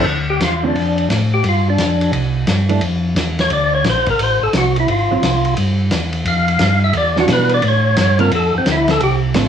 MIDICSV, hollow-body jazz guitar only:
0, 0, Header, 1, 2, 480
1, 0, Start_track
1, 0, Key_signature, -1, "minor"
1, 0, Tempo, 343643
1, 99, Time_signature, 4, 2, 24, 8
1, 13247, End_track
2, 0, Start_track
2, 0, Title_t, "Hollow-body jazz guitar"
2, 0, Program_c, 0, 26
2, 889, Note_on_c, 0, 50, 73
2, 896, Note_on_c, 0, 57, 64
2, 903, Note_on_c, 0, 60, 74
2, 904, Note_on_c, 0, 65, 73
2, 1041, Note_off_c, 0, 50, 0
2, 1045, Note_off_c, 0, 57, 0
2, 1049, Note_off_c, 0, 60, 0
2, 1049, Note_off_c, 0, 65, 0
2, 3761, Note_on_c, 0, 52, 62
2, 3774, Note_on_c, 0, 57, 63
2, 3779, Note_on_c, 0, 62, 76
2, 3917, Note_off_c, 0, 52, 0
2, 3924, Note_off_c, 0, 57, 0
2, 3927, Note_off_c, 0, 62, 0
2, 7138, Note_on_c, 0, 54, 62
2, 7150, Note_on_c, 0, 60, 65
2, 7166, Note_on_c, 0, 65, 71
2, 7286, Note_off_c, 0, 54, 0
2, 7292, Note_off_c, 0, 60, 0
2, 7300, Note_off_c, 0, 65, 0
2, 10026, Note_on_c, 0, 62, 72
2, 10027, Note_on_c, 0, 52, 74
2, 10029, Note_on_c, 0, 66, 84
2, 10031, Note_on_c, 0, 55, 69
2, 10632, Note_off_c, 0, 62, 0
2, 10633, Note_off_c, 0, 52, 0
2, 10634, Note_off_c, 0, 66, 0
2, 10635, Note_off_c, 0, 55, 0
2, 11436, Note_on_c, 0, 50, 68
2, 11444, Note_on_c, 0, 57, 72
2, 11447, Note_on_c, 0, 60, 74
2, 11460, Note_on_c, 0, 65, 75
2, 11594, Note_off_c, 0, 50, 0
2, 11598, Note_off_c, 0, 57, 0
2, 11600, Note_off_c, 0, 60, 0
2, 11606, Note_off_c, 0, 65, 0
2, 13054, Note_on_c, 0, 50, 69
2, 13056, Note_on_c, 0, 57, 73
2, 13070, Note_on_c, 0, 60, 76
2, 13070, Note_on_c, 0, 65, 73
2, 13247, Note_off_c, 0, 50, 0
2, 13247, Note_off_c, 0, 57, 0
2, 13247, Note_off_c, 0, 60, 0
2, 13247, Note_off_c, 0, 65, 0
2, 13247, End_track
0, 0, End_of_file